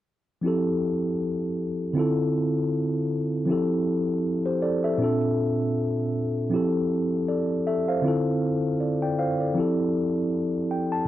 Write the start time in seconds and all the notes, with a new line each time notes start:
0.41 F3 C4 E4
0.46 G4 A4
1.93 D3 C4 E4
1.98 F4 A4
3.46 F3 C4 E4
3.50 G4 A4
4.46 G4 C5
4.62 A4 D5
4.84 A4 E5
4.98 A#2 C4 D4
5.02 F4 A4
6.50 F3 C4 E4
6.54 G4 A4
7.28 A4 D5
7.67 A4 E5
7.88 C5 F5
8.02 D3 C4 E4
8.06 F4 A4
8.80 A4 D5
9.02 D5 G5
9.19 C5 F5
9.40 A4 D5
9.54 F3 C4 E4
9.58 G4 A4
10.71 G5
10.92 A5